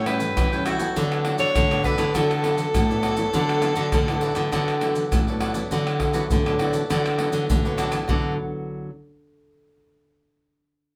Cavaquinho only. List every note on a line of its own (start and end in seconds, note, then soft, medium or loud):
0.06 0.50 E4 medium
0.06 0.51 A4 medium
0.06 0.51 C#5 medium
0.06 0.51 G5 medium
0.52 0.65 A4 soft
0.52 0.66 C#5 soft
0.52 0.66 G5 soft
0.65 0.80 E4 medium
0.65 0.80 A4 medium
0.65 0.79 C#5 medium
0.65 0.78 G5 medium
0.79 0.95 A4 soft
0.79 0.95 C#5 soft
0.79 0.94 G5 soft
0.96 1.23 F#4 medium
0.96 1.24 A4 medium
0.96 1.25 B4 medium
0.96 1.25 D5 medium
1.24 1.37 F#4 medium
1.24 1.38 A4 medium
1.24 1.38 B4 medium
1.24 1.39 D5 medium
1.39 1.49 F#4 medium
1.39 1.49 A4 medium
1.39 1.49 B4 medium
1.39 1.50 D5 medium
1.71 1.83 A4 soft
1.71 1.84 B4 soft
1.71 1.84 D5 soft
1.83 1.98 F#4 medium
1.83 1.99 A4 medium
1.83 1.97 B4 medium
1.83 1.96 D5 medium
1.97 2.14 A4 soft
1.97 2.13 B4 soft
1.97 2.13 D5 medium
2.14 2.42 F#4 medium
2.14 2.42 A4 medium
2.14 2.43 B4 medium
2.14 2.44 D5 medium
2.43 2.87 F#4 soft
2.43 2.88 A4 medium
2.43 2.88 B4 medium
2.43 2.88 D5 medium
2.89 3.02 A4 soft
2.89 3.03 B4 soft
2.89 3.03 D5 soft
3.03 3.17 F#4 medium
3.03 3.17 A4 medium
3.03 3.16 B4 medium
3.03 3.15 D5 medium
3.16 3.33 A4 soft
3.16 3.32 B4 soft
3.16 3.31 D5 soft
3.33 3.60 F#4 medium
3.33 3.61 A4 medium
3.33 3.62 B4 medium
3.33 3.63 D5 medium
3.62 3.75 F#4 soft
3.62 3.75 A4 medium
3.62 3.76 B4 medium
3.62 3.76 D5 medium
3.76 3.86 F#4 medium
3.76 3.87 A4 medium
3.76 3.87 B4 medium
3.76 3.87 D5 medium
4.08 4.21 A4 soft
4.08 4.22 B4 soft
4.08 4.22 D5 soft
4.21 4.36 F#4 medium
4.21 4.36 A4 medium
4.21 4.35 B4 medium
4.21 4.34 D5 medium
4.35 4.51 A4 soft
4.35 4.51 B4 soft
4.35 4.50 D5 soft
4.52 4.79 F#4 medium
4.52 4.80 A4 medium
4.52 4.81 B4 medium
4.52 4.82 D5 medium
4.81 5.25 F#4 soft
4.81 5.25 A4 soft
4.81 5.26 B4 medium
4.81 5.26 D5 medium
5.27 5.40 A4 soft
5.27 5.41 B4 soft
5.27 5.41 D5 soft
5.40 5.55 F#4 medium
5.40 5.55 A4 medium
5.40 5.54 B4 medium
5.40 5.53 D5 medium
5.54 5.70 A4 soft
5.54 5.70 B4 soft
5.54 5.69 D5 soft
5.71 5.98 F#4 medium
5.71 5.99 A4 medium
5.71 6.00 B4 medium
5.71 6.01 D5 medium
5.99 6.12 F#4 soft
5.99 6.13 A4 medium
5.99 6.13 B4 soft
5.99 6.14 D5 medium
6.13 6.24 F#4 medium
6.13 6.24 A4 medium
6.13 6.24 B4 medium
6.13 6.24 D5 medium
6.46 6.59 A4 soft
6.46 6.59 B4 soft
6.46 6.59 D5 soft
6.59 6.73 F#4 medium
6.59 6.74 A4 medium
6.59 6.73 B4 medium
6.59 6.72 D5 medium
6.73 6.89 A4 soft
6.73 6.88 B4 soft
6.73 6.88 D5 medium
6.90 7.17 F#4 medium
6.90 7.18 A4 medium
6.90 7.19 B4 medium
6.90 7.19 D5 medium
7.18 7.62 F#4 medium
7.18 7.63 A4 medium
7.18 7.63 B4 medium
7.18 7.64 D5 medium
7.65 7.77 A4 soft
7.65 7.78 B4 soft
7.65 7.78 D5 soft
7.78 7.92 F#4 medium
7.78 7.92 A4 medium
7.78 7.91 B4 medium
7.78 7.90 D5 medium
7.91 8.07 A4 soft
7.91 8.07 B4 soft
7.91 8.06 D5 soft
8.08 8.32 F#4 medium
8.08 8.32 A4 medium
8.08 8.33 B4 medium
8.08 8.33 D5 medium